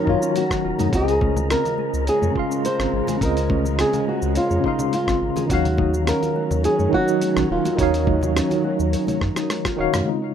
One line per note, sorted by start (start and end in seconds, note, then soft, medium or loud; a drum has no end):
0.00 0.03 D#3 loud
0.00 0.88 D#3 medium
0.00 0.07 F#3 medium
0.00 0.88 F#3 medium
0.00 0.88 C#4 medium
0.00 0.05 D#4 medium
0.00 10.08 A#4 medium
0.00 0.09 C#5 medium
0.00 0.95 F5 loud
0.00 10.08 A#5 medium
0.05 0.16 F#2 medium
0.05 0.90 F#3 medium
0.05 0.89 D#4 medium
0.05 0.15 F4 medium
0.05 0.35 F4 medium
0.05 0.91 C#5 medium
0.05 kick medium
0.22 0.34 C#4 loud
0.22 shaker medium
0.35 0.95 F#4 medium
0.35 open hi-hat medium
0.35 high conga medium
0.35 shaker medium
0.51 0.63 F#4 medium
0.51 kick medium
0.51 cross-stick medium
0.51 shaker soft
0.64 0.73 D#1 medium
0.64 0.73 F4 loud
0.79 0.88 F#2 medium
0.79 0.87 D#4 loud
0.79 open hi-hat soft
0.79 high conga loud
0.79 low conga medium
0.79 shaker medium
0.89 1.55 C#2 loud
0.89 2.30 C#3 medium
0.89 5.46 C#3 medium
0.89 5.46 G#3 medium
0.89 2.32 F4 medium
0.89 kick loud
0.93 1.07 C4 medium
0.93 1.51 G#4 loud
0.93 2.33 C5 medium
0.93 2.34 D#5 loud
0.93 open hi-hat medium
0.93 shaker medium
1.08 open hi-hat soft
1.08 shaker soft
1.21 1.35 C#4 loud
1.21 kick loud
1.21 high conga loud
1.36 low conga medium
1.36 shaker medium
1.50 1.64 C4 medium
1.50 2.04 A#4 loud
1.50 cross-stick medium
1.50 open hi-hat medium
1.50 shaker medium
1.65 1.73 F4 medium
1.65 open hi-hat soft
1.65 low conga medium
1.65 shaker soft
1.78 1.87 G#4 medium
1.78 high conga medium
1.93 2.10 C#2 medium
1.93 shaker medium
2.07 2.65 G#4 medium
2.07 2.21 C#5 medium
2.07 open hi-hat medium
2.07 shaker medium
2.22 2.30 F2 medium
2.22 2.34 C#5 medium
2.22 high conga medium
2.22 low conga medium
2.22 shaker soft
2.32 3.16 C#3 medium
2.36 3.18 F4 medium
2.36 3.20 F5 medium
2.36 3.19 C6 medium
2.36 kick medium
2.51 2.63 C#4 medium
2.51 shaker medium
2.64 3.23 C5 loud
2.64 open hi-hat medium
2.64 high conga medium
2.64 shaker medium
2.79 2.87 G#1 medium
2.79 2.91 C4 loud
2.79 cross-stick medium
2.79 shaker soft
2.93 3.02 G#1 medium
3.07 3.15 G#4 loud
3.07 open hi-hat soft
3.07 high conga medium
3.07 low conga medium
3.07 shaker medium
3.18 3.84 C#2 loud
3.18 4.59 C#3 medium
3.18 3.35 C4 medium
3.18 4.61 F4 medium
3.18 kick loud
3.22 3.80 A#4 loud
3.22 4.62 C5 medium
3.22 4.63 D#5 loud
3.22 open hi-hat medium
3.22 shaker medium
3.37 open hi-hat soft
3.37 shaker soft
3.50 3.63 C#4 loud
3.50 kick loud
3.50 high conga loud
3.65 low conga medium
3.65 shaker medium
3.78 3.92 C4 loud
3.78 4.06 G#4 medium
3.78 cross-stick medium
3.78 open hi-hat medium
3.78 shaker medium
3.93 4.01 F4 medium
3.93 open hi-hat soft
3.93 low conga medium
3.93 shaker soft
4.07 4.37 F#4 medium
4.07 4.15 G#4 medium
4.07 high conga medium
4.22 4.39 C#2 loud
4.22 shaker medium
4.35 4.63 F4 medium
4.35 4.49 C#5 medium
4.35 open hi-hat medium
4.35 shaker medium
4.50 4.59 F2 medium
4.50 4.63 C#5 medium
4.50 high conga medium
4.50 shaker soft
4.60 5.45 C#3 medium
4.60 5.46 F4 medium
4.60 kick medium
4.66 4.95 D#4 medium
4.66 5.48 F5 loud
4.66 5.47 C6 medium
4.79 4.91 C#4 medium
4.79 low conga medium
4.79 shaker medium
4.92 5.47 F4 medium
4.92 open hi-hat medium
4.92 high conga medium
4.92 shaker medium
5.07 5.16 G#1 medium
5.07 5.20 C4 loud
5.07 kick medium
5.07 cross-stick medium
5.07 shaker soft
5.21 5.30 G#1 medium
5.36 5.44 G#4 loud
5.36 open hi-hat soft
5.36 high conga medium
5.36 low conga loud
5.36 shaker medium
5.46 6.12 D#2 loud
5.46 6.87 D#3 medium
5.46 6.89 F#3 medium
5.46 6.88 D#4 medium
5.50 10.03 D#3 medium
5.50 10.03 F#3 medium
5.50 5.63 C#4 medium
5.50 10.03 C#4 medium
5.50 6.08 F#4 loud
5.50 6.90 C#5 medium
5.50 6.91 F5 loud
5.50 kick loud
5.50 open hi-hat medium
5.50 shaker medium
5.65 open hi-hat soft
5.65 low conga medium
5.65 shaker soft
5.78 5.92 D#4 loud
5.78 kick loud
5.78 high conga medium
5.94 low conga medium
5.94 shaker medium
6.07 6.21 C#4 medium
6.07 6.65 A#4 medium
6.07 cross-stick medium
6.07 open hi-hat medium
6.07 shaker medium
6.22 6.29 F4 medium
6.22 open hi-hat soft
6.22 low conga medium
6.22 shaker soft
6.36 6.44 F#4 medium
6.36 high conga medium
6.51 6.67 D#2 medium
6.51 low conga medium
6.51 shaker medium
6.64 6.94 G#4 loud
6.64 6.78 C#5 medium
6.64 open hi-hat medium
6.64 shaker medium
6.79 6.87 F#2 medium
6.79 6.92 C#5 medium
6.79 high conga medium
6.79 shaker soft
6.89 7.73 D#3 medium
6.89 7.74 D#4 medium
6.89 kick medium
6.93 7.75 F#3 medium
6.93 7.51 F#4 loud
6.93 7.76 C#5 medium
7.08 7.20 D#4 medium
7.08 shaker medium
7.21 open hi-hat medium
7.21 high conga medium
7.21 shaker medium
7.36 7.45 A#1 medium
7.36 7.48 C#4 loud
7.36 cross-stick medium
7.36 low conga medium
7.36 shaker soft
7.50 7.59 D#1 medium
7.50 7.80 F4 medium
7.65 7.72 F#4 loud
7.65 open hi-hat soft
7.65 high conga medium
7.65 low conga medium
7.65 shaker medium
7.75 8.41 D#2 loud
7.75 9.16 D#3 medium
7.75 9.18 F#3 medium
7.75 7.92 C#4 medium
7.75 9.17 D#4 medium
7.75 kick loud
7.75 open hi-hat medium
7.79 9.75 D#4 medium
7.79 9.19 C#5 medium
7.79 9.20 F5 loud
7.79 shaker medium
7.94 open hi-hat soft
7.94 shaker soft
8.07 8.21 D#4 loud
8.07 kick loud
8.07 high conga medium
8.21 low conga medium
8.21 shaker medium
8.36 8.49 C#4 loud
8.36 cross-stick medium
8.36 open hi-hat medium
8.36 shaker medium
8.51 8.58 F4 medium
8.51 open hi-hat soft
8.51 low conga medium
8.51 shaker soft
8.64 8.72 F#4 medium
8.64 high conga medium
8.79 8.96 D#2 loud
8.79 shaker medium
8.93 9.06 C#5 medium
8.93 open hi-hat medium
8.93 shaker medium
9.07 9.20 C#5 medium
9.07 open hi-hat soft
9.07 high conga medium
9.07 low conga medium
9.07 shaker soft
9.21 9.30 F#2 loud
9.21 kick medium
9.21 cross-stick medium
9.36 9.49 D#4 loud
9.36 cross-stick medium
9.36 open hi-hat soft
9.36 shaker medium
9.50 cross-stick medium
9.50 open hi-hat medium
9.50 high conga medium
9.50 shaker medium
9.65 9.77 F4 loud
9.65 kick medium
9.65 cross-stick medium
9.65 open hi-hat soft
9.65 shaker soft
9.77 9.88 D#1 medium
9.77 10.03 D#3 medium
9.77 10.03 D#4 medium
9.77 10.04 F#4 medium
9.77 9.93 C#5 loud
9.77 10.04 C#5 medium
9.77 10.05 F5 loud
9.93 10.02 F#2 medium
9.93 10.06 C#4 medium
9.93 cross-stick medium
9.93 open hi-hat soft
9.93 high conga medium
9.93 low conga loud
9.93 low conga medium
9.93 shaker medium
10.03 10.34 C#3 medium
10.03 10.34 G#3 medium
10.03 10.34 F4 medium
10.07 10.21 C4 medium
10.07 10.34 D#4 medium
10.07 10.34 F4 medium